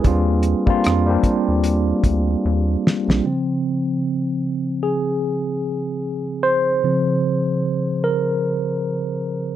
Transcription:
0, 0, Header, 1, 4, 480
1, 0, Start_track
1, 0, Tempo, 800000
1, 26, Time_signature, 4, 2, 24, 8
1, 5735, End_track
2, 0, Start_track
2, 0, Title_t, "Tine electric piano"
2, 0, Program_c, 0, 4
2, 0, Control_c, 0, 64, 127
2, 0, Note_on_c, 0, 68, 47
2, 0, Note_on_c, 0, 71, 51
2, 21, Note_on_c, 0, 55, 83
2, 27, Note_on_c, 0, 58, 67
2, 34, Note_on_c, 0, 60, 75
2, 35, Control_c, 0, 64, 0
2, 41, Note_on_c, 0, 62, 73
2, 43, Note_on_c, 0, 65, 85
2, 148, Control_c, 0, 64, 127
2, 158, Note_off_c, 0, 68, 0
2, 158, Note_off_c, 0, 71, 0
2, 357, Note_off_c, 0, 55, 0
2, 360, Note_off_c, 0, 58, 0
2, 364, Note_off_c, 0, 60, 0
2, 367, Note_off_c, 0, 62, 0
2, 368, Note_off_c, 0, 65, 0
2, 398, Note_on_c, 0, 55, 79
2, 404, Note_on_c, 0, 58, 81
2, 411, Note_on_c, 0, 60, 74
2, 416, Note_on_c, 0, 62, 72
2, 421, Note_on_c, 0, 65, 90
2, 612, Note_off_c, 0, 55, 0
2, 614, Note_off_c, 0, 58, 0
2, 618, Note_off_c, 0, 60, 0
2, 621, Note_off_c, 0, 62, 0
2, 623, Note_off_c, 0, 65, 0
2, 641, Note_on_c, 0, 55, 79
2, 648, Note_on_c, 0, 58, 72
2, 657, Note_on_c, 0, 60, 71
2, 660, Note_on_c, 0, 62, 73
2, 667, Note_on_c, 0, 67, 83
2, 1486, Note_off_c, 0, 55, 0
2, 1490, Note_off_c, 0, 58, 0
2, 1494, Note_off_c, 0, 60, 0
2, 1496, Note_off_c, 0, 62, 0
2, 1499, Note_off_c, 0, 67, 0
2, 1947, Note_on_c, 0, 49, 37
2, 1950, Note_on_c, 0, 53, 35
2, 1953, Control_c, 0, 64, 0
2, 1953, Note_on_c, 0, 60, 44
2, 2048, Control_c, 0, 64, 127
2, 2643, Note_off_c, 0, 49, 0
2, 2644, Note_off_c, 0, 53, 0
2, 2646, Note_off_c, 0, 60, 0
2, 2897, Note_on_c, 0, 68, 59
2, 3859, Note_on_c, 0, 72, 82
2, 3891, Note_off_c, 0, 68, 0
2, 4101, Note_on_c, 0, 49, 40
2, 4105, Note_on_c, 0, 53, 37
2, 4108, Note_on_c, 0, 60, 44
2, 4436, Note_off_c, 0, 49, 0
2, 4438, Note_off_c, 0, 53, 0
2, 4440, Note_off_c, 0, 60, 0
2, 4799, Note_off_c, 0, 72, 0
2, 4824, Note_on_c, 0, 70, 67
2, 5521, Note_off_c, 0, 70, 0
2, 5735, End_track
3, 0, Start_track
3, 0, Title_t, "Analog synth bass"
3, 0, Program_c, 1, 38
3, 31, Note_on_c, 1, 39, 104
3, 328, Note_off_c, 1, 39, 0
3, 406, Note_on_c, 1, 41, 45
3, 447, Note_off_c, 1, 41, 0
3, 520, Note_on_c, 1, 41, 101
3, 705, Note_off_c, 1, 41, 0
3, 890, Note_on_c, 1, 39, 76
3, 1160, Note_off_c, 1, 39, 0
3, 1225, Note_on_c, 1, 38, 90
3, 1416, Note_off_c, 1, 38, 0
3, 1471, Note_on_c, 1, 39, 93
3, 1660, Note_off_c, 1, 39, 0
3, 1849, Note_on_c, 1, 34, 87
3, 1928, Note_off_c, 1, 34, 0
3, 5735, End_track
4, 0, Start_track
4, 0, Title_t, "Drums"
4, 26, Note_on_c, 9, 42, 71
4, 28, Note_on_c, 9, 36, 93
4, 86, Note_off_c, 9, 42, 0
4, 88, Note_off_c, 9, 36, 0
4, 256, Note_on_c, 9, 42, 62
4, 316, Note_off_c, 9, 42, 0
4, 402, Note_on_c, 9, 36, 78
4, 462, Note_off_c, 9, 36, 0
4, 505, Note_on_c, 9, 42, 90
4, 519, Note_on_c, 9, 37, 95
4, 565, Note_off_c, 9, 42, 0
4, 579, Note_off_c, 9, 37, 0
4, 741, Note_on_c, 9, 36, 75
4, 741, Note_on_c, 9, 42, 59
4, 801, Note_off_c, 9, 36, 0
4, 801, Note_off_c, 9, 42, 0
4, 982, Note_on_c, 9, 42, 70
4, 1042, Note_off_c, 9, 42, 0
4, 1222, Note_on_c, 9, 36, 89
4, 1223, Note_on_c, 9, 42, 66
4, 1282, Note_off_c, 9, 36, 0
4, 1283, Note_off_c, 9, 42, 0
4, 1722, Note_on_c, 9, 38, 77
4, 1782, Note_off_c, 9, 38, 0
4, 1859, Note_on_c, 9, 38, 79
4, 1919, Note_off_c, 9, 38, 0
4, 5735, End_track
0, 0, End_of_file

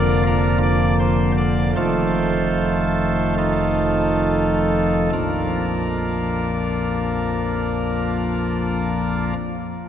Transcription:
0, 0, Header, 1, 2, 480
1, 0, Start_track
1, 0, Key_signature, -2, "major"
1, 0, Tempo, 1492537
1, 567, Tempo, 1617251
1, 1047, Tempo, 1754386
1, 1528, Time_signature, 4, 2, 24, 8
1, 2827, End_track
2, 0, Start_track
2, 0, Title_t, "Pipe organ"
2, 0, Program_c, 0, 19
2, 0, Note_on_c, 0, 29, 58
2, 0, Note_on_c, 0, 41, 61
2, 0, Note_on_c, 0, 50, 50
2, 0, Note_on_c, 0, 53, 53
2, 0, Note_on_c, 0, 58, 47
2, 0, Note_on_c, 0, 65, 84
2, 0, Note_on_c, 0, 70, 81
2, 0, Note_on_c, 0, 74, 107
2, 73, Note_off_c, 0, 74, 0
2, 74, Note_off_c, 0, 65, 0
2, 74, Note_off_c, 0, 70, 0
2, 84, Note_on_c, 0, 70, 99
2, 85, Note_on_c, 0, 62, 73
2, 86, Note_on_c, 0, 65, 72
2, 185, Note_off_c, 0, 62, 0
2, 185, Note_off_c, 0, 70, 0
2, 186, Note_off_c, 0, 65, 0
2, 202, Note_on_c, 0, 74, 104
2, 304, Note_off_c, 0, 74, 0
2, 320, Note_on_c, 0, 72, 105
2, 424, Note_off_c, 0, 72, 0
2, 442, Note_on_c, 0, 74, 93
2, 547, Note_off_c, 0, 74, 0
2, 555, Note_off_c, 0, 29, 0
2, 555, Note_off_c, 0, 41, 0
2, 555, Note_off_c, 0, 50, 0
2, 555, Note_off_c, 0, 53, 0
2, 555, Note_off_c, 0, 58, 0
2, 566, Note_on_c, 0, 29, 53
2, 566, Note_on_c, 0, 41, 56
2, 566, Note_on_c, 0, 72, 92
2, 567, Note_on_c, 0, 51, 46
2, 567, Note_on_c, 0, 57, 46
2, 568, Note_on_c, 0, 53, 47
2, 568, Note_on_c, 0, 65, 68
2, 568, Note_on_c, 0, 69, 78
2, 1035, Note_off_c, 0, 72, 0
2, 1036, Note_off_c, 0, 65, 0
2, 1036, Note_off_c, 0, 69, 0
2, 1046, Note_on_c, 0, 69, 86
2, 1047, Note_on_c, 0, 65, 66
2, 1048, Note_on_c, 0, 63, 68
2, 1517, Note_off_c, 0, 29, 0
2, 1517, Note_off_c, 0, 41, 0
2, 1517, Note_off_c, 0, 51, 0
2, 1517, Note_off_c, 0, 57, 0
2, 1517, Note_off_c, 0, 63, 0
2, 1517, Note_off_c, 0, 65, 0
2, 1517, Note_off_c, 0, 69, 0
2, 1518, Note_off_c, 0, 53, 0
2, 1524, Note_on_c, 0, 53, 48
2, 1525, Note_on_c, 0, 34, 57
2, 1525, Note_on_c, 0, 41, 45
2, 1525, Note_on_c, 0, 58, 47
2, 1525, Note_on_c, 0, 62, 46
2, 1525, Note_on_c, 0, 65, 44
2, 1525, Note_on_c, 0, 70, 62
2, 2674, Note_off_c, 0, 53, 0
2, 2675, Note_off_c, 0, 34, 0
2, 2675, Note_off_c, 0, 41, 0
2, 2675, Note_off_c, 0, 58, 0
2, 2675, Note_off_c, 0, 62, 0
2, 2675, Note_off_c, 0, 65, 0
2, 2675, Note_off_c, 0, 70, 0
2, 2827, End_track
0, 0, End_of_file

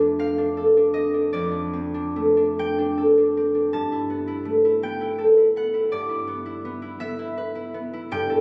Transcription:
0, 0, Header, 1, 2, 480
1, 0, Start_track
1, 0, Tempo, 769231
1, 832, Time_signature, 6, 3, 24, 8
1, 832, Tempo, 821918
1, 1792, Tempo, 739827
1, 3232, Tempo, 724638
1, 5359, End_track
2, 0, Start_track
2, 0, Title_t, "Harp"
2, 0, Program_c, 0, 46
2, 0, Note_on_c, 0, 41, 65
2, 0, Note_on_c, 0, 55, 37
2, 0, Note_on_c, 0, 57, 55
2, 0, Note_on_c, 0, 60, 46
2, 0, Note_on_c, 0, 77, 67
2, 0, Note_on_c, 0, 79, 95
2, 2, Note_on_c, 0, 62, 50
2, 111, Note_off_c, 0, 60, 0
2, 114, Note_off_c, 0, 77, 0
2, 118, Note_on_c, 0, 60, 53
2, 121, Note_on_c, 0, 77, 89
2, 180, Note_off_c, 0, 55, 0
2, 230, Note_off_c, 0, 62, 0
2, 237, Note_on_c, 0, 62, 52
2, 356, Note_on_c, 0, 69, 49
2, 472, Note_off_c, 0, 62, 0
2, 480, Note_on_c, 0, 62, 49
2, 581, Note_off_c, 0, 60, 0
2, 585, Note_on_c, 0, 75, 87
2, 589, Note_on_c, 0, 60, 50
2, 704, Note_off_c, 0, 62, 0
2, 711, Note_on_c, 0, 62, 51
2, 826, Note_off_c, 0, 41, 0
2, 828, Note_on_c, 0, 74, 89
2, 833, Note_on_c, 0, 41, 63
2, 847, Note_off_c, 0, 79, 0
2, 931, Note_off_c, 0, 62, 0
2, 938, Note_on_c, 0, 62, 50
2, 990, Note_off_c, 0, 75, 0
2, 1059, Note_off_c, 0, 60, 0
2, 1066, Note_on_c, 0, 60, 52
2, 1181, Note_off_c, 0, 62, 0
2, 1188, Note_on_c, 0, 62, 55
2, 1308, Note_off_c, 0, 57, 0
2, 1315, Note_on_c, 0, 57, 53
2, 1430, Note_off_c, 0, 62, 0
2, 1437, Note_on_c, 0, 62, 53
2, 1560, Note_off_c, 0, 60, 0
2, 1565, Note_on_c, 0, 60, 55
2, 1568, Note_on_c, 0, 79, 98
2, 1673, Note_off_c, 0, 62, 0
2, 1680, Note_on_c, 0, 62, 54
2, 1785, Note_off_c, 0, 69, 0
2, 1792, Note_on_c, 0, 69, 52
2, 1912, Note_off_c, 0, 62, 0
2, 1920, Note_on_c, 0, 62, 52
2, 2040, Note_off_c, 0, 60, 0
2, 2048, Note_on_c, 0, 60, 55
2, 2153, Note_off_c, 0, 62, 0
2, 2161, Note_on_c, 0, 62, 52
2, 2280, Note_on_c, 0, 43, 67
2, 2281, Note_on_c, 0, 81, 93
2, 2295, Note_off_c, 0, 41, 0
2, 2299, Note_off_c, 0, 77, 0
2, 2300, Note_off_c, 0, 60, 0
2, 2403, Note_on_c, 0, 64, 55
2, 2519, Note_on_c, 0, 59, 50
2, 2626, Note_off_c, 0, 64, 0
2, 2634, Note_on_c, 0, 64, 58
2, 2741, Note_off_c, 0, 57, 0
2, 2749, Note_on_c, 0, 57, 56
2, 2772, Note_off_c, 0, 79, 0
2, 2867, Note_off_c, 0, 64, 0
2, 2875, Note_on_c, 0, 64, 51
2, 2986, Note_off_c, 0, 59, 0
2, 2992, Note_on_c, 0, 59, 53
2, 2996, Note_on_c, 0, 79, 93
2, 3103, Note_off_c, 0, 64, 0
2, 3111, Note_on_c, 0, 64, 58
2, 3217, Note_off_c, 0, 69, 0
2, 3224, Note_on_c, 0, 69, 56
2, 3252, Note_off_c, 0, 74, 0
2, 3340, Note_off_c, 0, 64, 0
2, 3348, Note_on_c, 0, 64, 53
2, 3467, Note_off_c, 0, 59, 0
2, 3473, Note_on_c, 0, 59, 59
2, 3478, Note_on_c, 0, 78, 96
2, 3583, Note_off_c, 0, 64, 0
2, 3591, Note_on_c, 0, 64, 55
2, 3705, Note_off_c, 0, 43, 0
2, 3710, Note_on_c, 0, 74, 94
2, 3713, Note_on_c, 0, 43, 68
2, 3728, Note_off_c, 0, 69, 0
2, 3732, Note_off_c, 0, 78, 0
2, 3733, Note_off_c, 0, 57, 0
2, 3733, Note_off_c, 0, 81, 0
2, 3816, Note_off_c, 0, 64, 0
2, 3824, Note_on_c, 0, 64, 55
2, 3939, Note_off_c, 0, 59, 0
2, 3947, Note_on_c, 0, 59, 55
2, 4058, Note_off_c, 0, 64, 0
2, 4066, Note_on_c, 0, 64, 56
2, 4186, Note_off_c, 0, 59, 0
2, 4194, Note_on_c, 0, 59, 58
2, 4299, Note_off_c, 0, 64, 0
2, 4307, Note_on_c, 0, 64, 52
2, 4420, Note_off_c, 0, 59, 0
2, 4426, Note_on_c, 0, 59, 55
2, 4426, Note_on_c, 0, 76, 96
2, 4543, Note_off_c, 0, 64, 0
2, 4551, Note_on_c, 0, 64, 57
2, 4675, Note_on_c, 0, 71, 56
2, 4722, Note_off_c, 0, 62, 0
2, 4784, Note_off_c, 0, 64, 0
2, 4792, Note_on_c, 0, 64, 53
2, 4910, Note_off_c, 0, 59, 0
2, 4918, Note_on_c, 0, 59, 53
2, 5038, Note_off_c, 0, 64, 0
2, 5046, Note_on_c, 0, 64, 51
2, 5157, Note_off_c, 0, 43, 0
2, 5160, Note_off_c, 0, 79, 0
2, 5165, Note_on_c, 0, 43, 74
2, 5168, Note_on_c, 0, 79, 109
2, 5173, Note_off_c, 0, 76, 0
2, 5176, Note_off_c, 0, 59, 0
2, 5178, Note_off_c, 0, 64, 0
2, 5178, Note_off_c, 0, 71, 0
2, 5287, Note_on_c, 0, 69, 56
2, 5359, Note_off_c, 0, 43, 0
2, 5359, Note_off_c, 0, 69, 0
2, 5359, Note_off_c, 0, 74, 0
2, 5359, Note_off_c, 0, 79, 0
2, 5359, End_track
0, 0, End_of_file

